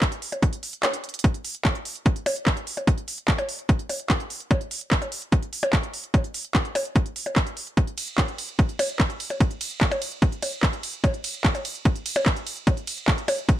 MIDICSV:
0, 0, Header, 1, 3, 480
1, 0, Start_track
1, 0, Tempo, 408163
1, 1459, Time_signature, 4, 2, 24, 8
1, 15992, End_track
2, 0, Start_track
2, 0, Title_t, "Percussion blips"
2, 380, Note_on_c, 9, 60, 40
2, 498, Note_off_c, 9, 60, 0
2, 980, Note_on_c, 9, 60, 81
2, 1098, Note_off_c, 9, 60, 0
2, 1940, Note_on_c, 9, 60, 39
2, 2057, Note_off_c, 9, 60, 0
2, 2659, Note_on_c, 9, 60, 76
2, 2777, Note_off_c, 9, 60, 0
2, 3260, Note_on_c, 9, 60, 37
2, 3378, Note_off_c, 9, 60, 0
2, 3980, Note_on_c, 9, 60, 76
2, 4098, Note_off_c, 9, 60, 0
2, 4580, Note_on_c, 9, 60, 38
2, 4698, Note_off_c, 9, 60, 0
2, 5300, Note_on_c, 9, 60, 80
2, 5417, Note_off_c, 9, 60, 0
2, 5900, Note_on_c, 9, 60, 39
2, 6018, Note_off_c, 9, 60, 0
2, 6620, Note_on_c, 9, 60, 82
2, 6737, Note_off_c, 9, 60, 0
2, 7220, Note_on_c, 9, 60, 42
2, 7338, Note_off_c, 9, 60, 0
2, 7940, Note_on_c, 9, 60, 85
2, 8058, Note_off_c, 9, 60, 0
2, 8540, Note_on_c, 9, 60, 41
2, 8657, Note_off_c, 9, 60, 0
2, 9620, Note_on_c, 9, 60, 43
2, 9738, Note_off_c, 9, 60, 0
2, 10340, Note_on_c, 9, 60, 84
2, 10457, Note_off_c, 9, 60, 0
2, 10940, Note_on_c, 9, 60, 43
2, 11057, Note_off_c, 9, 60, 0
2, 11660, Note_on_c, 9, 60, 84
2, 11777, Note_off_c, 9, 60, 0
2, 12260, Note_on_c, 9, 60, 42
2, 12377, Note_off_c, 9, 60, 0
2, 12980, Note_on_c, 9, 60, 84
2, 13097, Note_off_c, 9, 60, 0
2, 13580, Note_on_c, 9, 60, 42
2, 13697, Note_off_c, 9, 60, 0
2, 14299, Note_on_c, 9, 60, 85
2, 14417, Note_off_c, 9, 60, 0
2, 14900, Note_on_c, 9, 60, 41
2, 15017, Note_off_c, 9, 60, 0
2, 15619, Note_on_c, 9, 60, 84
2, 15737, Note_off_c, 9, 60, 0
2, 15992, End_track
3, 0, Start_track
3, 0, Title_t, "Drums"
3, 20, Note_on_c, 9, 36, 117
3, 20, Note_on_c, 9, 39, 121
3, 20, Note_on_c, 9, 42, 87
3, 137, Note_off_c, 9, 36, 0
3, 137, Note_off_c, 9, 39, 0
3, 137, Note_off_c, 9, 42, 0
3, 140, Note_on_c, 9, 42, 57
3, 258, Note_off_c, 9, 42, 0
3, 260, Note_on_c, 9, 46, 93
3, 378, Note_off_c, 9, 46, 0
3, 380, Note_on_c, 9, 42, 55
3, 498, Note_off_c, 9, 42, 0
3, 500, Note_on_c, 9, 36, 118
3, 500, Note_on_c, 9, 42, 84
3, 617, Note_off_c, 9, 36, 0
3, 618, Note_off_c, 9, 42, 0
3, 620, Note_on_c, 9, 42, 56
3, 738, Note_off_c, 9, 42, 0
3, 740, Note_on_c, 9, 46, 100
3, 857, Note_off_c, 9, 46, 0
3, 860, Note_on_c, 9, 42, 57
3, 978, Note_off_c, 9, 42, 0
3, 980, Note_on_c, 9, 39, 125
3, 980, Note_on_c, 9, 42, 88
3, 1098, Note_off_c, 9, 39, 0
3, 1098, Note_off_c, 9, 42, 0
3, 1100, Note_on_c, 9, 42, 56
3, 1217, Note_off_c, 9, 42, 0
3, 1220, Note_on_c, 9, 42, 56
3, 1280, Note_off_c, 9, 42, 0
3, 1280, Note_on_c, 9, 42, 64
3, 1339, Note_off_c, 9, 42, 0
3, 1339, Note_on_c, 9, 42, 79
3, 1400, Note_off_c, 9, 42, 0
3, 1400, Note_on_c, 9, 42, 86
3, 1460, Note_off_c, 9, 42, 0
3, 1460, Note_on_c, 9, 36, 119
3, 1460, Note_on_c, 9, 42, 70
3, 1577, Note_off_c, 9, 36, 0
3, 1577, Note_off_c, 9, 42, 0
3, 1580, Note_on_c, 9, 42, 42
3, 1697, Note_off_c, 9, 42, 0
3, 1700, Note_on_c, 9, 46, 108
3, 1817, Note_off_c, 9, 46, 0
3, 1820, Note_on_c, 9, 42, 41
3, 1937, Note_off_c, 9, 42, 0
3, 1940, Note_on_c, 9, 36, 124
3, 1940, Note_on_c, 9, 39, 127
3, 1940, Note_on_c, 9, 42, 70
3, 2057, Note_off_c, 9, 36, 0
3, 2057, Note_off_c, 9, 39, 0
3, 2057, Note_off_c, 9, 42, 0
3, 2060, Note_on_c, 9, 42, 42
3, 2177, Note_off_c, 9, 42, 0
3, 2179, Note_on_c, 9, 46, 95
3, 2297, Note_off_c, 9, 46, 0
3, 2299, Note_on_c, 9, 42, 42
3, 2417, Note_off_c, 9, 42, 0
3, 2420, Note_on_c, 9, 36, 121
3, 2420, Note_on_c, 9, 42, 69
3, 2537, Note_off_c, 9, 36, 0
3, 2537, Note_off_c, 9, 42, 0
3, 2540, Note_on_c, 9, 42, 43
3, 2657, Note_off_c, 9, 42, 0
3, 2659, Note_on_c, 9, 46, 105
3, 2777, Note_off_c, 9, 46, 0
3, 2779, Note_on_c, 9, 42, 43
3, 2897, Note_off_c, 9, 42, 0
3, 2900, Note_on_c, 9, 36, 117
3, 2900, Note_on_c, 9, 39, 127
3, 2900, Note_on_c, 9, 42, 73
3, 3017, Note_off_c, 9, 36, 0
3, 3017, Note_off_c, 9, 39, 0
3, 3017, Note_off_c, 9, 42, 0
3, 3020, Note_on_c, 9, 42, 43
3, 3137, Note_off_c, 9, 42, 0
3, 3140, Note_on_c, 9, 46, 92
3, 3258, Note_off_c, 9, 46, 0
3, 3260, Note_on_c, 9, 42, 43
3, 3378, Note_off_c, 9, 42, 0
3, 3380, Note_on_c, 9, 36, 126
3, 3380, Note_on_c, 9, 42, 69
3, 3497, Note_off_c, 9, 36, 0
3, 3498, Note_off_c, 9, 42, 0
3, 3500, Note_on_c, 9, 42, 40
3, 3617, Note_off_c, 9, 42, 0
3, 3620, Note_on_c, 9, 46, 114
3, 3737, Note_off_c, 9, 46, 0
3, 3740, Note_on_c, 9, 42, 42
3, 3858, Note_off_c, 9, 42, 0
3, 3860, Note_on_c, 9, 36, 127
3, 3860, Note_on_c, 9, 39, 127
3, 3860, Note_on_c, 9, 42, 71
3, 3977, Note_off_c, 9, 36, 0
3, 3978, Note_off_c, 9, 39, 0
3, 3978, Note_off_c, 9, 42, 0
3, 3980, Note_on_c, 9, 42, 41
3, 4098, Note_off_c, 9, 42, 0
3, 4100, Note_on_c, 9, 46, 101
3, 4218, Note_off_c, 9, 46, 0
3, 4220, Note_on_c, 9, 42, 41
3, 4338, Note_off_c, 9, 42, 0
3, 4340, Note_on_c, 9, 36, 127
3, 4340, Note_on_c, 9, 42, 66
3, 4457, Note_off_c, 9, 36, 0
3, 4458, Note_off_c, 9, 42, 0
3, 4460, Note_on_c, 9, 42, 42
3, 4578, Note_off_c, 9, 42, 0
3, 4580, Note_on_c, 9, 46, 110
3, 4698, Note_off_c, 9, 46, 0
3, 4700, Note_on_c, 9, 42, 42
3, 4818, Note_off_c, 9, 42, 0
3, 4820, Note_on_c, 9, 36, 127
3, 4820, Note_on_c, 9, 39, 127
3, 4820, Note_on_c, 9, 42, 71
3, 4937, Note_off_c, 9, 36, 0
3, 4938, Note_off_c, 9, 39, 0
3, 4938, Note_off_c, 9, 42, 0
3, 4940, Note_on_c, 9, 42, 40
3, 5057, Note_off_c, 9, 42, 0
3, 5060, Note_on_c, 9, 46, 98
3, 5177, Note_off_c, 9, 46, 0
3, 5180, Note_on_c, 9, 42, 40
3, 5297, Note_off_c, 9, 42, 0
3, 5300, Note_on_c, 9, 36, 127
3, 5300, Note_on_c, 9, 42, 64
3, 5417, Note_off_c, 9, 36, 0
3, 5417, Note_off_c, 9, 42, 0
3, 5420, Note_on_c, 9, 42, 39
3, 5538, Note_off_c, 9, 42, 0
3, 5540, Note_on_c, 9, 46, 113
3, 5658, Note_off_c, 9, 46, 0
3, 5660, Note_on_c, 9, 42, 39
3, 5778, Note_off_c, 9, 42, 0
3, 5780, Note_on_c, 9, 36, 127
3, 5780, Note_on_c, 9, 39, 127
3, 5780, Note_on_c, 9, 42, 68
3, 5898, Note_off_c, 9, 36, 0
3, 5898, Note_off_c, 9, 39, 0
3, 5898, Note_off_c, 9, 42, 0
3, 5900, Note_on_c, 9, 42, 39
3, 6018, Note_off_c, 9, 42, 0
3, 6020, Note_on_c, 9, 46, 102
3, 6137, Note_off_c, 9, 46, 0
3, 6140, Note_on_c, 9, 42, 39
3, 6257, Note_off_c, 9, 42, 0
3, 6260, Note_on_c, 9, 36, 126
3, 6260, Note_on_c, 9, 42, 62
3, 6377, Note_off_c, 9, 36, 0
3, 6377, Note_off_c, 9, 42, 0
3, 6380, Note_on_c, 9, 42, 39
3, 6497, Note_off_c, 9, 42, 0
3, 6500, Note_on_c, 9, 46, 110
3, 6617, Note_off_c, 9, 46, 0
3, 6620, Note_on_c, 9, 42, 39
3, 6737, Note_off_c, 9, 42, 0
3, 6740, Note_on_c, 9, 36, 126
3, 6740, Note_on_c, 9, 39, 127
3, 6740, Note_on_c, 9, 42, 68
3, 6857, Note_off_c, 9, 36, 0
3, 6858, Note_off_c, 9, 39, 0
3, 6858, Note_off_c, 9, 42, 0
3, 6860, Note_on_c, 9, 42, 40
3, 6978, Note_off_c, 9, 42, 0
3, 6980, Note_on_c, 9, 46, 100
3, 7098, Note_off_c, 9, 46, 0
3, 7100, Note_on_c, 9, 42, 40
3, 7218, Note_off_c, 9, 42, 0
3, 7220, Note_on_c, 9, 36, 122
3, 7220, Note_on_c, 9, 42, 64
3, 7337, Note_off_c, 9, 36, 0
3, 7338, Note_off_c, 9, 42, 0
3, 7340, Note_on_c, 9, 42, 38
3, 7458, Note_off_c, 9, 42, 0
3, 7460, Note_on_c, 9, 46, 116
3, 7577, Note_off_c, 9, 46, 0
3, 7580, Note_on_c, 9, 42, 38
3, 7698, Note_off_c, 9, 42, 0
3, 7700, Note_on_c, 9, 36, 127
3, 7700, Note_on_c, 9, 39, 123
3, 7700, Note_on_c, 9, 42, 66
3, 7817, Note_off_c, 9, 36, 0
3, 7818, Note_off_c, 9, 39, 0
3, 7818, Note_off_c, 9, 42, 0
3, 7820, Note_on_c, 9, 42, 39
3, 7938, Note_off_c, 9, 42, 0
3, 7940, Note_on_c, 9, 46, 101
3, 8058, Note_off_c, 9, 46, 0
3, 8060, Note_on_c, 9, 42, 38
3, 8178, Note_off_c, 9, 42, 0
3, 8180, Note_on_c, 9, 36, 126
3, 8180, Note_on_c, 9, 42, 63
3, 8298, Note_off_c, 9, 36, 0
3, 8298, Note_off_c, 9, 42, 0
3, 8300, Note_on_c, 9, 42, 39
3, 8417, Note_off_c, 9, 42, 0
3, 8420, Note_on_c, 9, 46, 109
3, 8537, Note_off_c, 9, 46, 0
3, 8540, Note_on_c, 9, 42, 38
3, 8657, Note_off_c, 9, 42, 0
3, 8660, Note_on_c, 9, 36, 127
3, 8660, Note_on_c, 9, 39, 121
3, 8660, Note_on_c, 9, 42, 65
3, 8777, Note_off_c, 9, 36, 0
3, 8777, Note_off_c, 9, 39, 0
3, 8777, Note_off_c, 9, 42, 0
3, 8780, Note_on_c, 9, 42, 39
3, 8898, Note_off_c, 9, 42, 0
3, 8900, Note_on_c, 9, 46, 98
3, 9017, Note_off_c, 9, 46, 0
3, 9020, Note_on_c, 9, 42, 39
3, 9137, Note_off_c, 9, 42, 0
3, 9140, Note_on_c, 9, 36, 120
3, 9140, Note_on_c, 9, 42, 64
3, 9257, Note_off_c, 9, 36, 0
3, 9257, Note_off_c, 9, 42, 0
3, 9260, Note_on_c, 9, 42, 37
3, 9378, Note_off_c, 9, 42, 0
3, 9380, Note_on_c, 9, 46, 110
3, 9380, Note_on_c, 9, 51, 80
3, 9497, Note_off_c, 9, 46, 0
3, 9497, Note_off_c, 9, 51, 0
3, 9500, Note_on_c, 9, 42, 39
3, 9617, Note_off_c, 9, 42, 0
3, 9620, Note_on_c, 9, 36, 122
3, 9620, Note_on_c, 9, 39, 121
3, 9620, Note_on_c, 9, 42, 66
3, 9737, Note_off_c, 9, 36, 0
3, 9738, Note_off_c, 9, 39, 0
3, 9738, Note_off_c, 9, 42, 0
3, 9740, Note_on_c, 9, 42, 37
3, 9858, Note_off_c, 9, 42, 0
3, 9860, Note_on_c, 9, 46, 97
3, 9860, Note_on_c, 9, 51, 81
3, 9977, Note_off_c, 9, 46, 0
3, 9977, Note_off_c, 9, 51, 0
3, 9980, Note_on_c, 9, 42, 40
3, 10097, Note_off_c, 9, 42, 0
3, 10100, Note_on_c, 9, 36, 123
3, 10100, Note_on_c, 9, 42, 63
3, 10217, Note_off_c, 9, 36, 0
3, 10217, Note_off_c, 9, 42, 0
3, 10220, Note_on_c, 9, 42, 39
3, 10337, Note_off_c, 9, 42, 0
3, 10340, Note_on_c, 9, 46, 106
3, 10340, Note_on_c, 9, 51, 78
3, 10457, Note_off_c, 9, 46, 0
3, 10457, Note_off_c, 9, 51, 0
3, 10460, Note_on_c, 9, 42, 39
3, 10577, Note_off_c, 9, 42, 0
3, 10580, Note_on_c, 9, 36, 123
3, 10580, Note_on_c, 9, 39, 119
3, 10580, Note_on_c, 9, 42, 66
3, 10697, Note_off_c, 9, 36, 0
3, 10697, Note_off_c, 9, 39, 0
3, 10697, Note_off_c, 9, 42, 0
3, 10700, Note_on_c, 9, 42, 39
3, 10817, Note_off_c, 9, 42, 0
3, 10820, Note_on_c, 9, 46, 92
3, 10820, Note_on_c, 9, 51, 80
3, 10937, Note_off_c, 9, 46, 0
3, 10937, Note_off_c, 9, 51, 0
3, 10940, Note_on_c, 9, 42, 38
3, 11057, Note_off_c, 9, 42, 0
3, 11060, Note_on_c, 9, 36, 119
3, 11060, Note_on_c, 9, 42, 68
3, 11177, Note_off_c, 9, 36, 0
3, 11177, Note_off_c, 9, 42, 0
3, 11180, Note_on_c, 9, 42, 39
3, 11297, Note_off_c, 9, 42, 0
3, 11300, Note_on_c, 9, 46, 105
3, 11300, Note_on_c, 9, 51, 86
3, 11417, Note_off_c, 9, 46, 0
3, 11417, Note_off_c, 9, 51, 0
3, 11420, Note_on_c, 9, 42, 40
3, 11537, Note_off_c, 9, 42, 0
3, 11540, Note_on_c, 9, 36, 119
3, 11540, Note_on_c, 9, 39, 123
3, 11540, Note_on_c, 9, 42, 69
3, 11657, Note_off_c, 9, 36, 0
3, 11657, Note_off_c, 9, 39, 0
3, 11657, Note_off_c, 9, 42, 0
3, 11660, Note_on_c, 9, 42, 40
3, 11777, Note_off_c, 9, 42, 0
3, 11780, Note_on_c, 9, 46, 91
3, 11780, Note_on_c, 9, 51, 86
3, 11897, Note_off_c, 9, 46, 0
3, 11897, Note_off_c, 9, 51, 0
3, 11900, Note_on_c, 9, 42, 40
3, 12017, Note_off_c, 9, 42, 0
3, 12020, Note_on_c, 9, 36, 117
3, 12020, Note_on_c, 9, 42, 67
3, 12137, Note_off_c, 9, 36, 0
3, 12137, Note_off_c, 9, 42, 0
3, 12140, Note_on_c, 9, 42, 41
3, 12257, Note_off_c, 9, 42, 0
3, 12260, Note_on_c, 9, 46, 103
3, 12260, Note_on_c, 9, 51, 84
3, 12377, Note_off_c, 9, 46, 0
3, 12377, Note_off_c, 9, 51, 0
3, 12380, Note_on_c, 9, 42, 40
3, 12497, Note_off_c, 9, 42, 0
3, 12500, Note_on_c, 9, 36, 118
3, 12500, Note_on_c, 9, 39, 120
3, 12500, Note_on_c, 9, 42, 69
3, 12617, Note_off_c, 9, 36, 0
3, 12617, Note_off_c, 9, 39, 0
3, 12617, Note_off_c, 9, 42, 0
3, 12620, Note_on_c, 9, 42, 41
3, 12737, Note_off_c, 9, 42, 0
3, 12740, Note_on_c, 9, 46, 90
3, 12740, Note_on_c, 9, 51, 82
3, 12857, Note_off_c, 9, 46, 0
3, 12857, Note_off_c, 9, 51, 0
3, 12860, Note_on_c, 9, 42, 41
3, 12977, Note_off_c, 9, 42, 0
3, 12980, Note_on_c, 9, 36, 116
3, 12980, Note_on_c, 9, 42, 69
3, 13097, Note_off_c, 9, 36, 0
3, 13097, Note_off_c, 9, 42, 0
3, 13100, Note_on_c, 9, 42, 42
3, 13217, Note_off_c, 9, 42, 0
3, 13219, Note_on_c, 9, 46, 107
3, 13219, Note_on_c, 9, 51, 86
3, 13337, Note_off_c, 9, 46, 0
3, 13337, Note_off_c, 9, 51, 0
3, 13340, Note_on_c, 9, 42, 41
3, 13457, Note_off_c, 9, 42, 0
3, 13460, Note_on_c, 9, 36, 117
3, 13460, Note_on_c, 9, 39, 123
3, 13460, Note_on_c, 9, 42, 71
3, 13577, Note_off_c, 9, 36, 0
3, 13577, Note_off_c, 9, 39, 0
3, 13577, Note_off_c, 9, 42, 0
3, 13580, Note_on_c, 9, 42, 43
3, 13697, Note_off_c, 9, 42, 0
3, 13699, Note_on_c, 9, 46, 92
3, 13699, Note_on_c, 9, 51, 87
3, 13817, Note_off_c, 9, 46, 0
3, 13817, Note_off_c, 9, 51, 0
3, 13820, Note_on_c, 9, 42, 43
3, 13937, Note_off_c, 9, 42, 0
3, 13939, Note_on_c, 9, 42, 69
3, 13940, Note_on_c, 9, 36, 117
3, 14057, Note_off_c, 9, 36, 0
3, 14057, Note_off_c, 9, 42, 0
3, 14060, Note_on_c, 9, 42, 43
3, 14177, Note_off_c, 9, 42, 0
3, 14179, Note_on_c, 9, 46, 104
3, 14179, Note_on_c, 9, 51, 84
3, 14297, Note_off_c, 9, 46, 0
3, 14297, Note_off_c, 9, 51, 0
3, 14299, Note_on_c, 9, 42, 42
3, 14417, Note_off_c, 9, 42, 0
3, 14420, Note_on_c, 9, 36, 117
3, 14420, Note_on_c, 9, 39, 124
3, 14420, Note_on_c, 9, 42, 72
3, 14537, Note_off_c, 9, 36, 0
3, 14537, Note_off_c, 9, 39, 0
3, 14537, Note_off_c, 9, 42, 0
3, 14540, Note_on_c, 9, 42, 43
3, 14657, Note_off_c, 9, 42, 0
3, 14659, Note_on_c, 9, 46, 89
3, 14659, Note_on_c, 9, 51, 82
3, 14777, Note_off_c, 9, 46, 0
3, 14777, Note_off_c, 9, 51, 0
3, 14779, Note_on_c, 9, 42, 42
3, 14897, Note_off_c, 9, 42, 0
3, 14900, Note_on_c, 9, 36, 114
3, 14900, Note_on_c, 9, 42, 70
3, 15017, Note_off_c, 9, 36, 0
3, 15017, Note_off_c, 9, 42, 0
3, 15020, Note_on_c, 9, 42, 42
3, 15137, Note_off_c, 9, 42, 0
3, 15140, Note_on_c, 9, 46, 106
3, 15140, Note_on_c, 9, 51, 83
3, 15257, Note_off_c, 9, 46, 0
3, 15257, Note_off_c, 9, 51, 0
3, 15260, Note_on_c, 9, 42, 43
3, 15377, Note_off_c, 9, 42, 0
3, 15380, Note_on_c, 9, 36, 118
3, 15380, Note_on_c, 9, 39, 124
3, 15380, Note_on_c, 9, 42, 73
3, 15497, Note_off_c, 9, 36, 0
3, 15497, Note_off_c, 9, 39, 0
3, 15497, Note_off_c, 9, 42, 0
3, 15499, Note_on_c, 9, 42, 43
3, 15617, Note_off_c, 9, 42, 0
3, 15619, Note_on_c, 9, 46, 94
3, 15619, Note_on_c, 9, 51, 86
3, 15737, Note_off_c, 9, 46, 0
3, 15737, Note_off_c, 9, 51, 0
3, 15740, Note_on_c, 9, 42, 43
3, 15857, Note_off_c, 9, 42, 0
3, 15860, Note_on_c, 9, 36, 122
3, 15860, Note_on_c, 9, 42, 70
3, 15977, Note_off_c, 9, 36, 0
3, 15977, Note_off_c, 9, 42, 0
3, 15992, End_track
0, 0, End_of_file